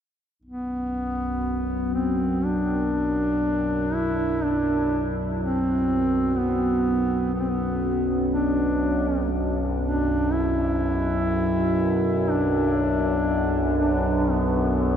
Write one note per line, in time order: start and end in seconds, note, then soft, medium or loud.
0.39 14.97 B1 medium
0.39 14.97 F#2 medium
0.45 1.90 B3 medium
1.94 2.46 C4 medium
2.45 3.95 D4 medium
3.94 4.44 E4 medium
4.43 5.14 D4 medium
5.40 6.40 C4 medium
6.38 7.34 B3 medium
7.34 7.42 B3 medium
7.40 7.51 C4 medium
7.50 8.09 B3 medium
8.34 9.28 D4 medium
9.82 10.33 D4 medium
10.31 12.31 E4 loud
12.30 13.77 D4 medium
13.78 14.32 D4 medium
14.31 14.97 B3 medium